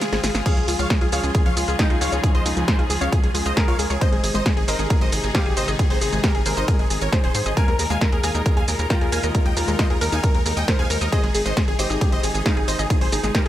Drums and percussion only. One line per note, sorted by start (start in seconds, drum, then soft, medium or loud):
0.01 snare medium
0.01 closed hi-hat loud
0.01 shaker soft
0.13 snare medium
0.13 closed hi-hat soft
0.24 snare loud
0.24 open hi-hat loud
0.24 shaker medium
0.35 snare medium
0.35 closed hi-hat soft
0.35 shaker soft
0.46 kick loud
0.46 closed hi-hat loud
0.46 crash medium
0.46 shaker soft
0.57 closed hi-hat soft
0.68 open hi-hat loud
0.68 shaker medium
0.79 closed hi-hat soft
0.79 shaker soft
0.90 kick loud
0.90 snare loud
0.90 closed hi-hat loud
0.90 shaker soft
1.01 closed hi-hat soft
1.12 open hi-hat loud
1.12 shaker medium
1.24 shaker soft
1.35 kick loud
1.35 closed hi-hat loud
1.35 shaker soft
1.46 closed hi-hat soft
1.57 open hi-hat loud
1.57 shaker medium
1.68 closed hi-hat soft
1.68 shaker soft
1.79 kick loud
1.79 snare loud
1.79 closed hi-hat loud
1.79 shaker soft
1.90 closed hi-hat soft
2.01 open hi-hat loud
2.01 shaker medium
2.12 closed hi-hat soft
2.12 shaker soft
2.24 kick loud
2.24 closed hi-hat loud
2.24 shaker soft
2.35 closed hi-hat soft
2.46 open hi-hat loud
2.46 shaker medium
2.57 closed hi-hat soft
2.57 shaker soft
2.68 kick loud
2.68 snare loud
2.68 closed hi-hat loud
2.68 shaker soft
2.79 closed hi-hat soft
2.90 open hi-hat loud
2.90 shaker medium
3.01 closed hi-hat soft
3.01 shaker soft
3.12 kick loud
3.12 closed hi-hat medium
3.12 shaker soft
3.24 closed hi-hat soft
3.35 open hi-hat loud
3.35 shaker medium
3.46 shaker soft
3.57 kick loud
3.57 snare loud
3.57 closed hi-hat loud
3.57 shaker soft
3.68 closed hi-hat soft
3.79 open hi-hat loud
3.79 shaker medium
3.90 closed hi-hat soft
3.90 shaker soft
4.01 kick loud
4.01 closed hi-hat medium
4.01 shaker soft
4.13 closed hi-hat soft
4.24 open hi-hat loud
4.24 shaker medium
4.35 closed hi-hat soft
4.35 shaker soft
4.46 kick loud
4.46 snare loud
4.46 closed hi-hat medium
4.46 shaker soft
4.57 closed hi-hat soft
4.68 open hi-hat loud
4.68 shaker medium
4.79 closed hi-hat soft
4.79 shaker soft
4.90 kick loud
4.90 closed hi-hat medium
4.90 shaker soft
5.01 closed hi-hat soft
5.12 open hi-hat loud
5.12 shaker medium
5.24 closed hi-hat soft
5.24 shaker soft
5.35 kick loud
5.35 snare loud
5.35 closed hi-hat medium
5.35 shaker soft
5.46 closed hi-hat soft
5.57 open hi-hat loud
5.57 shaker medium
5.68 closed hi-hat soft
5.68 shaker soft
5.79 kick loud
5.79 closed hi-hat medium
5.79 shaker soft
5.90 open hi-hat medium
6.01 open hi-hat loud
6.01 shaker medium
6.13 closed hi-hat soft
6.13 shaker soft
6.24 kick loud
6.24 snare loud
6.24 closed hi-hat loud
6.24 shaker soft
6.35 closed hi-hat soft
6.46 open hi-hat loud
6.46 shaker medium
6.57 closed hi-hat soft
6.57 shaker soft
6.68 kick loud
6.68 closed hi-hat medium
6.68 shaker soft
6.79 closed hi-hat soft
6.90 open hi-hat loud
6.90 shaker medium
7.01 closed hi-hat soft
7.01 shaker soft
7.13 kick loud
7.13 snare loud
7.13 closed hi-hat medium
7.13 shaker soft
7.24 closed hi-hat soft
7.35 open hi-hat loud
7.35 shaker medium
7.46 closed hi-hat soft
7.46 shaker soft
7.57 kick loud
7.57 closed hi-hat medium
7.57 shaker soft
7.68 closed hi-hat soft
7.79 open hi-hat loud
7.79 shaker medium
7.90 closed hi-hat soft
7.90 shaker soft
8.01 kick loud
8.01 snare loud
8.01 closed hi-hat medium
8.01 shaker soft
8.12 closed hi-hat soft
8.23 open hi-hat loud
8.23 shaker medium
8.35 closed hi-hat soft
8.35 shaker soft
8.46 kick loud
8.46 closed hi-hat medium
8.46 shaker soft
8.57 closed hi-hat soft
8.68 open hi-hat loud
8.68 shaker medium
8.79 closed hi-hat soft
8.79 shaker soft
8.90 kick loud
8.90 snare loud
8.90 closed hi-hat medium
8.90 shaker soft
9.01 closed hi-hat soft
9.12 open hi-hat loud
9.12 shaker medium
9.23 closed hi-hat soft
9.23 shaker soft
9.35 kick loud
9.35 closed hi-hat medium
9.35 shaker soft
9.46 closed hi-hat soft
9.57 open hi-hat loud
9.57 shaker medium
9.68 closed hi-hat soft
9.68 shaker soft
9.79 kick loud
9.79 snare loud
9.79 closed hi-hat loud
9.79 shaker soft
9.90 closed hi-hat soft
10.01 open hi-hat loud
10.01 shaker medium
10.12 shaker soft
10.24 kick loud
10.24 closed hi-hat medium
10.24 shaker soft
10.35 closed hi-hat soft
10.46 open hi-hat loud
10.46 shaker medium
10.57 closed hi-hat soft
10.57 shaker soft
10.68 kick loud
10.68 snare loud
10.68 closed hi-hat medium
10.68 shaker soft
10.79 closed hi-hat soft
10.90 open hi-hat loud
10.90 shaker medium
11.01 closed hi-hat soft
11.01 shaker soft
11.12 kick loud
11.12 closed hi-hat loud
11.12 shaker soft
11.24 closed hi-hat soft
11.35 open hi-hat loud
11.35 shaker medium
11.46 closed hi-hat soft
11.46 shaker soft
11.57 kick loud
11.57 snare loud
11.57 closed hi-hat loud
11.57 shaker soft
11.68 closed hi-hat soft
11.79 open hi-hat loud
11.79 shaker medium
11.90 closed hi-hat soft
11.90 shaker soft
12.01 kick loud
12.01 closed hi-hat loud
12.01 shaker soft
12.12 closed hi-hat soft
12.23 open hi-hat loud
12.23 shaker medium
12.35 closed hi-hat soft
12.35 shaker soft
12.46 kick loud
12.46 snare loud
12.46 closed hi-hat loud
12.46 shaker soft
12.57 closed hi-hat soft
12.68 open hi-hat loud
12.68 shaker medium
12.79 closed hi-hat soft
12.79 shaker soft
12.90 kick loud
12.90 closed hi-hat loud
12.90 shaker soft
13.01 open hi-hat medium
13.12 open hi-hat loud
13.12 shaker medium
13.24 snare soft
13.24 closed hi-hat soft
13.24 shaker soft
13.35 kick loud
13.35 snare loud
13.35 closed hi-hat loud
13.35 shaker soft